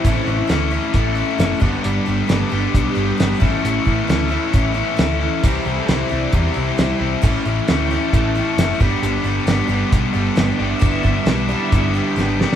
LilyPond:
<<
  \new Staff \with { instrumentName = "String machine" } { \time 4/4 \key g \lydian \tempo 4 = 134 c'8 e'8 r2. | d''8 a'8 g'4 g'2 | r8 b'8 e''8 cis''8 b'8 a'8 e'8 r8 | r8 a'8 c''8 d''8 e''8 c''8 r4 |
r4 g''8 a''8 g''8 a''8 g''8 a''8 | b''8 r2 e''8 g''8 e''8~ | e''4 e''8 e''4 g''4 r8 | }
  \new Staff \with { instrumentName = "Twelve-string acoustic guitar" } { \time 4/4 \key g \lydian <a, e a cis' e'>8 <a cis' e'>8 <e a cis' e'>8 <a cis' e'>4 <a cis' e'>8 <e a cis' e'>8 <g, d g b d' g'>8~ | <g, d g b d' g'>8 <g b d' g'>8 <g b d' g'>8 <g b d' g'>4 <g b d' g'>8 <g b d' g'>8 <a, e a cis' e'>8~ | <a, e a cis' e'>8 <a cis' e'>8 <e a cis' e'>8 <a cis' e'>4 <a cis' e'>8 <e a cis' e'>4 | <c e g c' e'>8 <g c' e'>8 <e g c' e'>8 <g c' e'>4 <g c' e'>8 <e g c' e'>4 |
<a, e a cis' e'>8 <a cis' e'>8 <e a cis' e'>8 <a cis' e'>4 <a cis' e'>8 <e a cis' e'>8 <g, d g b d' g'>8~ | <g, d g b d' g'>8 <g b d' g'>8 <g b d' g'>8 <g b d' g'>4 <g b d' g'>8 <g b d' g'>4 | <g, d g b d' g'>8 <g b d' g'>8 <g b d' g'>8 <g b d' g'>4 <g b d' g'>8 <g b d' g'>4 | }
  \new Staff \with { instrumentName = "Overdriven electric guitar" } { \time 4/4 \key g \lydian <a, e a cis' e'>8 <a cis' e'>8 <e a cis' e'>8 <a cis' e'>8 <a, e a cis' e'>8 <a cis' e'>4 <g, d g b d'>8 | <g, d g b d'>8 <g b d'>8 <d g b d'>8 <g b d'>8 <g, d g b d'>8 <g b d'>4 <a, e a cis' e'>8 | <a, e a cis' e'>8 <a cis' e'>8 <e a cis' e'>8 <a cis' e'>8 <a, e a cis' e'>8 <a cis' e'>4 <a cis' e'>8 | <c e g c' e'>8 <g c' e'>8 <e g c' e'>8 <g c' e'>8 <c e g c' e'>8 <g c' e'>4 <g c' e'>8 |
<a, e a cis' e'>8 <a cis' e'>8 <e a cis' e'>8 <a cis' e'>8 <a, e a cis' e'>8 <a cis' e'>4 <g, d g b d'>8 | <g, d g b d'>8 <g b d'>8 <d g b d'>8 <g b d'>8 <g, d g b d'>8 <g b d'>4 <g b d'>8 | <g, d g b d'>8 <g b d'>8 <d g b d'>8 <g b d'>8 <g, d g b d'>8 <g b d'>4 <g b d'>8 | }
  \new Staff \with { instrumentName = "Distorted electric guitar" } { \clef bass \time 4/4 \key g \lydian <a, e a>2 <a, e a>4. <g, d g>8~ | <g, d g>4. <g, d g>2 <a, e a>8~ | <a, e a>4. <a, e a>2 r8 | <c g c'>2 <c g c'>2 |
<a, e a>2 <a, e a>4. <g, d g>8~ | <g, d g>4. <g, d g>2 <g, d g>8~ | <g, d g>4. <g, d g>2 r8 | }
  \new Staff \with { instrumentName = "Picked electric bass" } { \clef bass \time 4/4 \key g \lydian a,,8 a,,8 d,4 a,,4 fis,,8 g,,8 | g,,8 g,,8 g,,8 g,,8 b,,8 g,,8 g,,8 a,,8 | a,,8 a,,8 d,4 a,,4 d,4 | c,8 c,8 c,8 c,8 e,8 c,8 c,8 c,8 |
a,,8 a,,8 d,4 a,,4 fis,,8 g,,8 | g,,8 g,,8 g,,8 g,,8 b,,8 g,,8 g,,8 g,,8 | g,,8 g,,8 b,,4 g,,4 gis,,4 | }
  \new DrumStaff \with { instrumentName = "Drums" } \drummode { \time 4/4 <hh bd>4 <hh sn>4 <hh bd>4 <hh sn>8 <bd sn>8 | hh4 <hh sn>4 <hh bd>4 <hh sn>8 <bd sn>8 | hh8 bd8 <hh sn>4 <hh bd>4 <hh sn>4 | <hh bd>4 <hh sn>4 <hh bd>4 <hh sn>4 |
<hh bd>4 <hh sn>8 sn8 <hh bd>4 <hh sn>8 bd8 | hh4 <hh sn>4 <hh bd>4 <hh sn>4 | <hh bd>8 bd8 <hh sn>4 <hh bd>4 sn8 sn8 | }
>>